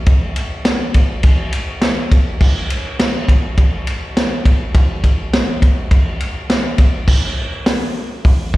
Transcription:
0.06 kick, ride
0.36 ride
0.65 snare, ride
0.94 kick, ride
1.23 kick, ride
1.52 ride
1.81 snare, ride
2.11 kick, ride
2.40 kick, crash
2.70 ride
2.99 snare, ride
3.28 kick, ride
3.58 kick, ride
3.87 ride
4.17 snare, ride
4.45 kick, ride
4.75 kick, ride
5.04 kick, ride
5.33 snare, ride
5.62 kick, ride
5.91 kick, ride
6.20 ride
6.50 snare, ride
6.78 kick, ride
7.08 kick, crash
7.66 snare, open hi-hat
8.25 kick, open hi-hat
8.54 kick

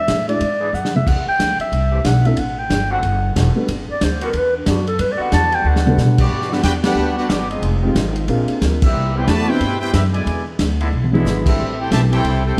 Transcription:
Already playing: E5
0.08 A2, kick, snare, hi-hat pedal, ride
0.28 G#3 D4 E4 F#4 D5, ride
0.40 G#2, kick, ride
0.60 E3 B3 D4 G#4
0.73 F#2 F#5, hi-hat pedal
0.85 snare
0.96 E5, mid tom
1.07 E2 F#5, kick, crash
1.26 G5, muted upright bass stroke
1.39 D2, kick, snare, hi-hat pedal, ride
1.59 E5, muted upright bass stroke, ride
1.72 C2, kick, ride
1.92 E3 A3 C4 G4
2.04 B1 F#5, kick, snare, hi-hat pedal, ride
2.25 F#3 C4 D4 E4 A4 E5, ride
2.37 A1 F#5, kick, ride
2.59 G5
2.70 G1, kick, snare, hi-hat pedal, ride
2.90 D3 A3 C4 F#4 F#5
3.03 F#1, kick, ride
3.35 E1 D3 A3 C4 F#4, kick, snare, hi-hat pedal, ride
3.55 G3 B3 D4 F#4 A4, muted upright bass stroke
3.68 G1, kick, ride
3.89 D5, muted upright bass stroke
4.01 D2 C5, kick, snare, hi-hat pedal, ride
4.21 D3 G3 B3 F#4 A#4, ride
4.33 E2, kick, ride
4.38 B4
4.57 D4
4.66 F#2 D3 G3 B3 D4 F#4, kick, snare, hi-hat pedal, ride
4.87 A4, ride
4.99 G2 B4, kick, ride
5.12 D5
5.18 D3 G3 B3 F#4 F#5, muted upright bass stroke
5.32 E2 A5, kick, snare, hi-hat pedal, ride
5.52 G5, ride
5.64 D2 D3 G3 B3 F#4 F#5
5.76 snare
5.86 G3 B3 D4 F#4 A4, mid tom
5.97 B2, snare, hi-hat pedal
6.18 G3 B3 D4 F#4 G4 D5, kick, crash
6.31 G2, kick
6.41 snare
6.49 D3 G3 B3 D4 F#4 G4 B4 F#5, snare
6.63 E2 B3 D4 F#4 G4 B4 G5, kick, snare, hi-hat pedal, ride
6.83 G3 B3 D4 G4 A4 B4 F#5, snare, ride
6.94 D2 D3 G3 B3 F#4
7.17 B3 D4 F#4 G4 B4 F#5
7.29 G1 F#3 B3 D4 F#4 G4 D5, kick, snare, hi-hat pedal, ride
7.49 G#3 C4 D#4 F4 G#4 D#5, ride
7.62 F1, kick, ride
7.82 D#3 G#3 C4 D#4 F4 G4
7.95 G#1, kick, snare, hi-hat pedal, ride
8.16 ride
8.28 A#1 C3 G#3 A#3 C4 D4 F4 G#4, kick, ride
8.48 muted upright bass stroke, ride
8.61 D2, kick, snare, hi-hat pedal, ride
8.82 G3 A#3 C4 E4 G4 B4 E5, kick, crash
8.95 C2
9.14 C3 G3 B3 E4 G4 B4 C5 G5
9.26 E2 A3 F#4 B4 D5 A5, kick, snare, hi-hat pedal, ride
9.47 B2 B3 C4 D4 E4 G4 B4 C5 G5
9.60 G2, kick, ride
9.80 B3 E4 G4 B4 C5 G5
9.92 F#2 G3 B3 C4 E4 G4 B4 E5, kick, snare, hi-hat pedal, ride
10.13 B2 D3 G#3 E4 B4 D5 G#5, ride
10.26 E2, kick, ride
10.59 D2, kick, snare, hi-hat pedal, ride
10.80 D3 G#3 B3 E4, ride
10.93 B1
11.04 high tom
11.11 D3 F#3 G#3 B3 D4 E4 G#4, high tom
11.25 G#1, snare, hi-hat pedal
11.46 G3 C4 E4 G4 A4 E5, kick, crash
11.59 A1
11.78 C4 E4 G4 A4 C5 G5
11.91 B1 C3 E3 G3 A3 B3 C4 E4 G4 A4 C5 E5 A5, kick, snare, hi-hat pedal, ride
12.11 E3 A3 C4 E4 G4 A4 C5 G5, ride
12.24 C2, kick, ride
12.45 C4 E4 G4 A4 C5 G5

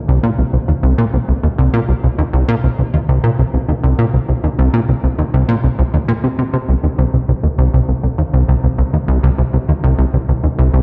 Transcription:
0.08 C2
0.23 A#2
0.38 C2
0.53 C2
0.68 D#2
0.83 C2
0.98 A#2
1.13 C2
1.29 C2
1.43 D#2
1.58 C2
1.74 A#2
1.89 C2
2.04 C2
2.18 D#2
2.33 C2
2.48 A#2
2.64 C2
2.79 C2
2.94 D#2
3.09 C2
3.24 A#2
3.39 C2
3.54 C2
3.69 D#2
3.84 C2
3.99 A#2
4.14 C2
4.29 C2
4.44 D#2
4.59 C2
4.74 A#2
4.89 C2
5.04 C2
5.19 D#2
5.34 C2
5.49 A#2
5.64 C2
5.79 C2
5.94 D#2
6.08 A#2
6.24 C3
6.39 C3
6.54 C3
6.69 C2
6.83 D#2
6.98 C2
7.13 C2
7.28 C2
7.43 D#2
7.58 C2
7.74 C2
7.88 C2
8.03 C2
8.18 D#2
8.33 C2
8.48 C2
8.64 C2
8.78 C2
8.93 D#2
9.08 C2
9.23 C2
9.38 C2
9.54 C2
9.69 D#2
9.84 C2
9.98 C2
10.13 C2
10.29 C2
10.44 D#2
10.59 C2
10.74 C2

